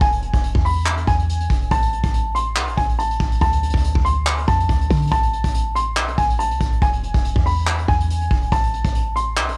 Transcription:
0.01 0.32 E1 loud
0.01 0.61 G#5 medium
0.01 kick loud
0.01 closed hi-hat medium
0.12 closed hi-hat medium
0.22 closed hi-hat medium
0.34 0.54 E1 loud
0.34 kick loud
0.34 closed hi-hat medium
0.44 closed hi-hat medium
0.55 1.05 E2 loud
0.55 kick loud
0.65 1.05 B5 medium
0.65 open hi-hat medium
0.86 clap loud
0.86 closed hi-hat medium
0.97 closed hi-hat medium
1.07 1.48 E2 loud
1.07 1.67 G#5 medium
1.07 kick medium
1.07 closed hi-hat medium
1.19 closed hi-hat medium
1.29 closed hi-hat medium
1.40 closed hi-hat medium
1.50 1.70 E1 loud
1.50 kick loud
1.50 closed hi-hat medium
1.61 closed hi-hat medium
1.71 2.02 A1 loud
1.71 2.31 A5 loud
1.71 kick loud
1.71 closed hi-hat medium
1.82 closed hi-hat medium
1.93 closed hi-hat medium
2.04 2.58 A1 loud
2.04 kick loud
2.04 closed hi-hat medium
2.14 closed hi-hat medium
2.35 2.75 C6 medium
2.35 closed hi-hat medium
2.56 2.69 C2 medium
2.56 clap loud
2.56 closed hi-hat medium
2.67 2.77 A1 loud
2.67 closed hi-hat medium
2.77 3.18 A1 loud
2.77 2.97 G#5 medium
2.77 kick medium
2.77 closed hi-hat medium
2.89 closed hi-hat medium
2.99 3.39 A5 medium
2.99 closed hi-hat medium
3.10 closed hi-hat medium
3.20 3.41 A1 loud
3.20 kick loud
3.20 closed hi-hat medium
3.32 closed hi-hat medium
3.41 3.73 D2 loud
3.41 4.02 A5 medium
3.41 kick loud
3.41 closed hi-hat medium
3.53 closed hi-hat medium
3.63 closed hi-hat medium
3.70 closed hi-hat medium
3.74 3.94 D2 loud
3.74 kick loud
3.74 closed hi-hat medium
3.84 closed hi-hat medium
3.95 4.46 D2 loud
3.95 kick loud
4.05 4.45 C6 medium
4.05 closed hi-hat medium
4.26 clap loud
4.26 closed hi-hat medium
4.38 closed hi-hat medium
4.48 4.68 F2 loud
4.48 5.08 A5 medium
4.48 kick medium
4.48 closed hi-hat medium
4.60 closed hi-hat medium
4.69 4.90 D2 loud
4.69 kick loud
4.69 closed hi-hat medium
4.81 closed hi-hat medium
4.90 5.11 D3 loud
4.90 kick loud
4.90 closed hi-hat medium
4.96 closed hi-hat medium
5.02 closed hi-hat medium
5.07 closed hi-hat medium
5.12 5.43 A1 loud
5.12 5.72 A5 loud
5.12 kick loud
5.12 closed hi-hat medium
5.23 closed hi-hat medium
5.33 closed hi-hat medium
5.44 5.98 A1 loud
5.44 kick loud
5.44 closed hi-hat medium
5.54 closed hi-hat medium
5.75 6.15 C6 medium
5.75 closed hi-hat medium
5.97 6.17 B1 loud
5.97 clap loud
5.97 closed hi-hat medium
6.08 closed hi-hat medium
6.18 6.52 A1 loud
6.18 6.37 G#5 medium
6.18 kick medium
6.18 closed hi-hat medium
6.30 closed hi-hat medium
6.39 6.79 A5 medium
6.39 closed hi-hat medium
6.51 6.60 C2 loud
6.51 closed hi-hat medium
6.61 6.81 A1 loud
6.61 kick medium
6.61 closed hi-hat medium
6.72 closed hi-hat medium
6.82 7.13 E1 loud
6.82 7.42 G#5 medium
6.82 kick loud
6.82 closed hi-hat medium
6.93 closed hi-hat medium
7.03 closed hi-hat medium
7.14 7.35 E1 loud
7.14 kick loud
7.14 closed hi-hat medium
7.24 closed hi-hat medium
7.36 7.86 E2 loud
7.36 kick loud
7.46 7.86 B5 medium
7.46 open hi-hat medium
7.67 clap loud
7.67 closed hi-hat medium
7.78 closed hi-hat medium
7.88 8.29 E2 loud
7.88 8.48 G#5 loud
7.88 kick loud
7.88 closed hi-hat medium
8.00 closed hi-hat medium
8.10 closed hi-hat medium
8.21 closed hi-hat medium
8.31 8.51 E1 loud
8.31 kick loud
8.31 closed hi-hat medium
8.42 closed hi-hat medium
8.52 8.83 A1 loud
8.52 9.12 A5 loud
8.52 kick loud
8.52 closed hi-hat medium
8.63 closed hi-hat medium
8.73 closed hi-hat medium
8.85 9.39 A1 loud
8.85 kick loud
8.85 closed hi-hat medium
8.95 closed hi-hat medium
9.16 9.56 C6 medium
9.16 closed hi-hat medium
9.37 9.50 C2 loud
9.37 clap loud
9.37 closed hi-hat medium
9.48 9.57 A1 loud
9.48 closed hi-hat medium

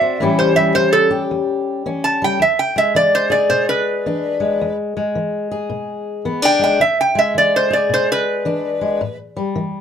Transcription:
0.00 0.15 A3 medium
0.00 0.18 C4 medium
0.00 0.18 F#4 medium
0.00 0.37 E5 loud
0.20 0.71 A2 medium
0.20 0.75 E3 medium
0.20 0.55 G3 medium
0.20 1.85 C#4 medium
0.20 1.09 G4 medium
0.39 0.56 C5 medium
0.56 2.21 G3 medium
0.56 0.74 E5 medium
0.75 1.26 E3 medium
0.75 0.92 C5 loud
0.93 1.22 A4 loud
1.11 2.38 G4 medium
1.31 1.81 E2 medium
1.86 2.36 E3 medium
1.86 2.38 C#4 medium
2.04 2.21 A5 loud
2.22 2.41 G3 medium
2.22 2.41 G5 medium
2.39 2.91 E2 medium
2.39 2.59 E5 medium
2.59 2.76 G5 medium
2.76 4.40 G#3 medium
2.76 2.95 E5 medium
2.95 3.46 E3 medium
2.95 3.13 D5 loud
3.15 3.32 C5 loud
3.30 5.51 G#4 medium
3.30 3.49 D5 medium
3.49 4.01 B2 medium
3.49 3.68 C5 medium
3.69 4.76 B4 medium
4.06 4.57 E3 medium
4.06 4.64 D4 medium
4.40 4.96 G#3 medium
4.61 5.12 E2 medium
4.97 6.58 G#3 medium
5.15 5.67 E3 medium
5.51 6.79 G#4 medium
5.70 6.21 B2 medium
6.25 6.77 E3 medium
6.25 6.42 B3 medium
6.42 6.80 D4 medium
6.42 6.62 G5 medium
6.59 6.78 G#3 medium
6.64 6.81 G5 medium
6.80 7.31 E2 medium
6.80 6.99 E5 medium
7.01 7.18 G5 medium
7.15 8.80 G#3 medium
7.15 7.36 E5 medium
7.35 7.86 E3 medium
7.35 7.55 D5 medium
7.56 7.73 C5 medium
7.70 8.99 G#4 medium
7.70 7.91 D5 medium
7.89 8.41 B2 medium
7.94 8.10 C5 loud
8.12 9.18 B4 loud
8.45 8.97 E3 medium
8.45 8.99 D4 medium
8.81 8.99 G#3 medium
9.01 9.52 A2 medium
9.37 9.81 G3 medium
9.56 9.81 E3 medium

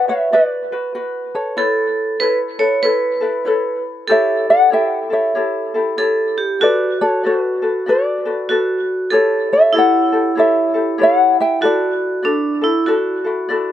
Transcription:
0.00 0.10 F#4 medium
0.00 1.65 B4 loud
0.08 0.32 F#4 soft
0.08 0.32 B4 soft
0.08 0.32 C#5 medium
0.08 0.31 C#5 medium
0.08 0.33 E5 medium
0.32 0.71 F#4 medium
0.32 0.71 B4 medium
0.32 1.30 B4 medium
0.32 0.71 D5 medium
0.32 1.30 D5 medium
0.72 0.94 F#4 soft
0.72 0.94 B4 medium
0.95 1.58 F#4 medium
0.95 1.56 B4 medium
1.35 2.17 A4 medium
1.35 2.17 C#5 medium
1.57 2.20 E4 medium
1.57 2.22 A4 medium
1.57 2.21 A4 medium
1.57 2.20 B4 medium
1.57 2.19 C#5 medium
2.20 2.59 E4 medium
2.20 2.58 A4 medium
2.20 2.37 B4 medium
2.20 2.59 B4 medium
2.20 2.58 C#5 medium
2.59 2.82 E4 soft
2.59 2.82 A4 medium
2.59 2.83 B4 medium
2.59 2.82 C#5 medium
2.82 3.21 E4 medium
2.82 3.19 A4 medium
2.82 3.80 B4 medium
2.82 3.21 B4 medium
2.82 3.20 C#5 medium
3.21 3.44 E4 soft
3.21 3.44 A4 medium
3.21 3.45 B4 medium
3.45 4.09 E4 medium
3.45 4.09 A4 medium
3.45 4.08 B4 medium
3.45 4.09 C#5 medium
4.08 4.71 E4 medium
4.08 4.70 G4 medium
4.08 5.97 A4 loud
4.08 4.72 A4 medium
4.08 4.46 C#5 medium
4.12 4.50 E5 medium
4.50 4.71 D5 medium
4.50 4.73 F#5 medium
4.70 5.10 E4 medium
4.70 5.10 G4 medium
4.70 5.09 A4 medium
4.70 5.10 C#5 medium
4.70 5.08 E5 medium
4.70 5.08 G5 medium
5.10 5.35 E4 soft
5.10 5.34 G4 soft
5.10 5.34 A4 soft
5.10 6.33 C#5 medium
5.10 6.33 E5 medium
5.35 5.74 E4 medium
5.35 5.73 G4 medium
5.35 5.73 A4 medium
5.35 5.73 C#5 medium
5.74 5.97 E4 medium
5.74 5.97 G4 soft
5.74 5.98 A4 medium
5.97 6.60 E4 medium
5.97 6.60 G4 medium
5.97 6.37 A4 loud
5.97 6.61 A4 medium
5.97 6.60 C#5 medium
6.38 6.62 G4 medium
6.60 7.23 F#4 medium
6.60 8.45 F#4 medium
6.60 7.25 A4 medium
6.60 7.23 B4 medium
6.60 6.97 B4 medium
6.60 7.01 D5 medium
7.01 7.23 A4 medium
7.01 7.22 C#5 loud
7.23 7.62 F#4 medium
7.23 7.84 F#4 medium
7.23 7.61 A4 medium
7.23 7.62 B4 medium
7.23 7.89 B4 medium
7.23 7.62 D5 medium
7.62 7.86 F#4 soft
7.62 7.86 A4 medium
7.62 7.86 B4 soft
7.86 8.25 F#4 medium
7.86 8.24 A4 medium
7.86 8.25 B4 medium
7.86 8.24 D5 medium
7.86 8.85 D5 medium
7.90 8.85 B4 medium
8.25 8.49 F#4 medium
8.25 8.49 A4 medium
8.25 8.49 B4 medium
8.49 9.08 F#4 medium
8.49 9.11 F#4 medium
8.49 9.12 A4 medium
8.49 9.12 B4 medium
8.49 9.11 D5 medium
9.10 9.74 E4 medium
9.10 9.72 G4 medium
9.10 9.75 A4 medium
9.10 9.74 A4 medium
9.10 9.48 A4 medium
9.10 9.72 C#5 medium
9.10 9.52 C#5 medium
9.53 9.74 C#5 medium
9.53 9.74 E5 medium
9.73 11.67 E4 medium
9.73 10.12 E4 medium
9.73 10.12 G4 medium
9.73 10.11 A4 medium
9.73 10.12 C#5 medium
9.78 10.35 C#5 medium
9.78 10.39 F#5 medium
10.12 10.36 E4 soft
10.12 10.35 G4 soft
10.12 10.36 A4 medium
10.35 10.74 E4 medium
10.35 10.75 G4 medium
10.35 10.73 A4 medium
10.35 10.74 C#5 medium
10.35 10.96 C#5 medium
10.39 11.03 E5 loud
10.74 10.98 E4 medium
10.74 10.97 G4 soft
10.74 10.98 A4 medium
10.98 11.61 E4 medium
10.98 11.61 G4 medium
10.98 11.62 A4 medium
10.98 11.61 C#5 medium
10.98 11.36 C#5 medium
11.03 11.41 F#5 loud
11.40 11.62 E5 medium
11.40 11.63 G5 loud
11.61 12.24 E4 medium
11.61 12.22 F#4 medium
11.61 12.27 F#4 medium
11.61 12.24 A4 medium
11.61 13.47 A4 medium
11.61 12.22 D5 medium
11.65 13.48 D5 medium
12.23 12.61 D4 medium
12.23 12.62 E4 medium
12.23 12.62 F#4 medium
12.23 12.60 A4 medium
12.23 12.62 D5 medium
12.61 12.87 E4 medium
12.61 12.86 E4 medium
12.61 12.86 F#4 soft
12.61 12.86 A4 medium
12.86 13.25 E4 medium
12.86 13.72 F#4 medium
12.86 13.25 F#4 medium
12.86 13.23 A4 medium
12.86 13.25 D5 medium
13.24 13.49 E4 medium
13.24 13.48 F#4 medium
13.24 13.49 A4 medium
13.49 13.72 E4 medium
13.49 13.72 F#4 medium
13.49 13.72 A4 medium
13.49 13.72 D5 medium

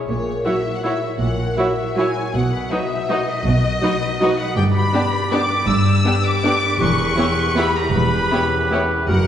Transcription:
0.00 0.10 B3 soft
0.00 1.57 E4 soft
0.00 0.10 G#4 soft
0.00 0.10 B4 soft
0.00 0.25 C#5 soft
0.09 0.38 A#1 medium
0.09 1.19 A#2 soft
0.09 0.38 A#2 medium
0.09 0.43 C#5 medium
0.26 0.64 C#5 soft
0.45 0.53 F#3 soft
0.45 0.53 E4 soft
0.45 0.59 F#4 soft
0.45 0.54 F#4 soft
0.45 0.83 F#4 soft
0.45 0.54 C#5 soft
0.45 0.60 E5 soft
0.45 0.74 E5 medium
0.65 1.02 C#5 soft
0.75 0.85 F#5 medium
0.83 0.91 F#3 soft
0.83 0.92 E4 soft
0.83 0.97 F#4 soft
0.83 1.38 F#4 soft
0.83 0.93 F#4 soft
0.83 0.93 C#5 soft
0.83 0.98 E5 soft
0.83 1.20 E5 medium
1.03 1.77 C#5 soft
1.20 1.50 A#1 medium
1.20 2.36 A#2 soft
1.20 1.50 A#2 medium
1.20 1.57 F#5 medium
1.39 1.97 F#4 soft
1.57 1.66 F#3 soft
1.57 1.66 E4 soft
1.57 2.36 E4 soft
1.57 1.72 F#4 soft
1.57 1.67 F#4 soft
1.57 1.67 C#5 soft
1.57 1.72 E5 soft
1.57 1.98 E5 medium
1.78 2.16 C#5 soft
1.97 2.05 F#3 soft
1.97 2.05 E4 soft
1.97 2.11 F#4 soft
1.97 2.70 F#4 soft
1.97 2.07 F#4 soft
1.97 2.07 C#5 soft
1.97 2.11 E5 soft
1.97 2.35 G#5 medium
2.17 2.36 C#5 soft
2.35 2.64 B1 medium
2.35 3.45 B2 medium
2.35 2.64 B2 medium
2.35 2.71 F#5 medium
2.52 2.90 B4 soft
2.70 2.79 F#3 soft
2.70 2.79 D#4 soft
2.70 2.85 F#4 soft
2.70 2.79 F#4 soft
2.70 3.09 F#4 soft
2.70 2.80 B4 soft
2.70 2.86 D#5 soft
2.70 3.10 E5 medium
2.91 3.27 B4 soft
3.09 3.17 F#3 medium
3.09 3.17 D#4 soft
3.09 3.23 F#4 soft
3.09 3.63 F#4 soft
3.09 3.18 F#4 medium
3.09 3.18 B4 soft
3.09 3.23 D#5 soft
3.09 4.39 D#5 medium
3.29 4.00 B4 soft
3.46 3.75 B1 medium
3.46 4.58 B2 medium
3.46 3.75 B2 medium
3.64 4.20 F#4 soft
3.82 3.90 F#3 soft
3.82 3.90 D#4 soft
3.82 4.58 D#4 soft
3.82 3.96 F#4 soft
3.82 3.92 F#4 soft
3.82 3.91 B4 soft
3.82 3.96 D#5 medium
4.02 4.38 B4 soft
4.20 4.29 F#3 soft
4.20 4.29 D#4 soft
4.20 4.33 F#4 soft
4.20 4.58 F#4 soft
4.20 4.30 F#4 medium
4.20 4.30 B4 medium
4.20 4.33 D#5 soft
4.39 4.73 B4 soft
4.39 4.57 F#5 medium
4.56 4.85 G1 medium
4.56 5.66 G2 medium
4.56 4.85 G2 medium
4.56 6.77 G4 medium
4.56 6.76 D5 medium
4.56 4.63 G5 medium
4.73 5.11 B4 soft
4.73 5.30 B5 medium
4.93 5.01 B3 soft
4.93 5.01 D4 soft
4.93 5.30 G4 medium
4.93 5.02 G4 soft
4.93 5.02 D5 medium
5.13 5.49 B4 soft
5.32 5.40 B3 medium
5.32 5.40 D4 medium
5.32 5.84 G4 medium
5.32 5.40 G4 medium
5.32 5.40 D5 medium
5.32 5.67 D6 medium
5.50 6.23 B4 medium
5.67 5.96 G1 medium
5.67 5.96 G2 medium
5.67 6.82 G2 medium
5.67 6.24 E6 medium
5.85 6.43 G4 medium
6.05 6.13 B3 soft
6.05 6.13 D4 soft
6.05 6.82 D4 medium
6.05 6.13 G4 medium
6.05 6.13 D5 soft
6.24 6.61 B4 soft
6.24 6.81 D6 medium
6.43 6.51 B3 medium
6.43 6.51 D4 medium
6.43 7.17 G4 soft
6.43 6.53 G4 medium
6.43 6.52 D5 medium
6.63 6.98 B4 medium
6.80 7.10 E1 medium
6.80 7.10 E2 medium
6.80 7.94 E2 medium
6.80 9.09 G4 medium
6.80 9.04 B4 medium
6.80 7.56 C#6 medium
6.99 7.37 B4 soft
7.17 7.26 B3 soft
7.17 7.25 E4 soft
7.17 7.26 G4 soft
7.17 7.56 G4 soft
7.17 7.26 C#5 soft
7.38 7.75 B4 soft
7.56 7.64 B3 medium
7.56 7.64 E4 soft
7.56 8.12 G4 soft
7.56 7.66 G4 medium
7.56 7.66 C#5 medium
7.56 7.77 B5 medium
7.76 8.51 B4 medium
7.76 7.94 A#5 medium
7.94 8.24 E1 medium
7.94 8.24 E2 medium
7.94 9.10 E2 medium
7.94 8.72 B5 medium
8.13 8.70 G4 soft
8.31 8.39 B3 soft
8.31 9.27 C#4 medium
8.31 8.40 E4 soft
8.31 8.41 G4 soft
8.31 8.41 C#5 soft
8.52 8.89 B4 soft
8.71 8.79 B3 soft
8.71 8.79 E4 soft
8.71 9.10 G4 soft
8.71 8.80 G4 soft
8.71 8.81 C#5 medium
8.90 9.10 B4 soft
9.08 9.27 F#1 medium
9.08 9.27 F#2 soft
9.08 9.27 F#2 medium
9.08 9.27 F#4 soft
9.08 9.27 A#4 medium
9.08 9.27 F#5 medium

